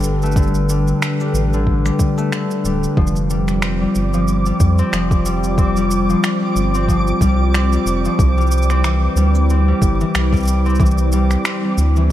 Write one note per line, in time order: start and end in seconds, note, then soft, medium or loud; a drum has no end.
0.00 0.93 G1 medium
0.00 0.36 D3 medium
0.00 0.41 G3 medium
0.00 12.12 G3 medium
0.00 0.23 A3 medium
0.00 0.10 C4 medium
0.00 2.94 D4 medium
0.00 2.94 A4 medium
0.00 2.94 B4 medium
0.00 shaker soft
0.02 shaker soft
0.04 shaker medium
0.22 1.02 A3 medium
0.22 shaker soft
0.26 shaker soft
0.32 shaker soft
0.36 1.53 D3 medium
0.36 kick loud
0.36 shaker soft
0.43 shaker soft
0.47 shaker soft
0.55 shaker soft
0.69 1.20 G3 medium
0.69 shaker medium
0.87 shaker soft
1.02 2.17 A3 medium
1.02 finger snap medium
1.02 shaker soft
1.20 1.55 G3 medium
1.20 shaker soft
1.34 1.91 A1 medium
1.34 shaker medium
1.53 2.31 D3 medium
1.53 shaker soft
1.67 kick medium
1.85 2.37 G3 medium
1.85 finger snap soft
1.85 shaker soft
1.99 kick medium
1.99 shaker medium
2.17 5.50 A3 medium
2.17 shaker soft
2.32 3.02 D3 medium
2.32 finger snap medium
2.32 shaker soft
2.51 shaker soft
2.64 2.87 D1 medium
2.64 3.02 G3 medium
2.64 shaker medium
2.84 shaker soft
2.97 3.87 F1 medium
2.97 4.13 F3 medium
2.97 12.12 C4 medium
2.97 8.15 F4 medium
2.97 12.12 C5 medium
2.97 12.12 D6 medium
2.97 kick loud
3.07 shaker soft
3.16 shaker soft
3.30 3.80 G3 medium
3.30 shaker medium
3.48 finger snap soft
3.48 shaker soft
3.62 4.78 C4 medium
3.62 finger snap medium
3.62 shaker soft
3.81 4.45 G3 medium
3.95 4.52 G1 medium
3.95 shaker medium
4.14 4.92 F3 medium
4.14 shaker soft
4.28 shaker soft
4.46 5.25 G3 medium
4.46 shaker soft
4.60 4.82 F2 medium
4.60 kick medium
4.60 shaker medium
4.78 5.58 C4 loud
4.78 shaker soft
4.93 6.15 F1 medium
4.93 6.08 F3 medium
4.93 finger snap medium
4.93 shaker soft
5.11 kick loud
5.11 shaker soft
5.26 5.76 G3 medium
5.26 shaker medium
5.44 shaker soft
5.58 6.74 C4 medium
5.58 kick loud
5.58 shaker soft
5.77 6.41 G3 medium
5.77 shaker soft
5.91 shaker medium
6.09 6.88 F3 medium
6.09 shaker soft
6.24 finger snap medium
6.24 shaker soft
6.42 7.21 G3 medium
6.56 7.13 G1 medium
6.56 shaker medium
6.75 7.55 C4 loud
6.75 shaker soft
6.88 8.04 F3 medium
6.88 kick medium
6.88 shaker soft
7.07 shaker soft
7.21 7.78 C2 medium
7.21 7.72 G3 medium
7.21 kick medium
7.21 shaker medium
7.54 8.69 C4 medium
7.54 finger snap medium
7.54 shaker soft
7.73 8.24 G3 medium
7.73 shaker soft
7.86 8.08 F1 loud
7.86 shaker medium
8.05 8.24 F3 medium
8.05 shaker soft
8.19 9.08 C2 medium
8.19 12.12 E4 medium
8.19 kick loud
8.19 shaker soft
8.37 9.16 G3 medium
8.37 shaker soft
8.41 shaker soft
8.47 shaker soft
8.51 shaker medium
8.58 shaker soft
8.62 shaker soft
8.70 9.50 C4 medium
8.70 finger snap soft
8.70 shaker soft
8.84 10.00 E3 medium
8.84 finger snap medium
8.84 shaker soft
9.16 9.73 D2 loud
9.16 9.67 G3 medium
9.16 shaker medium
9.35 shaker soft
9.50 10.65 C4 medium
9.50 shaker soft
9.68 10.32 G3 medium
9.81 10.04 G1 medium
9.81 kick medium
9.81 shaker medium
10.01 10.79 E3 medium
10.01 shaker soft
10.15 11.37 C2 medium
10.15 finger snap medium
10.15 shaker soft
10.33 11.12 G3 medium
10.33 kick medium
10.33 shaker soft
10.36 shaker soft
10.40 shaker soft
10.43 shaker soft
10.45 shaker soft
10.48 shaker medium
10.66 11.46 C4 loud
10.66 shaker soft
10.69 shaker soft
10.75 shaker soft
10.80 11.95 E3 medium
10.80 kick loud
10.80 shaker soft
10.86 shaker soft
10.91 shaker soft
10.98 shaker soft
11.12 11.63 G3 medium
11.12 shaker medium
11.31 finger snap soft
11.31 shaker soft
11.45 12.12 C4 medium
11.45 finger snap medium
11.45 shaker soft
11.64 12.12 G3 medium
11.77 12.12 D2 medium
11.77 shaker medium
11.96 12.12 E3 medium
11.96 shaker soft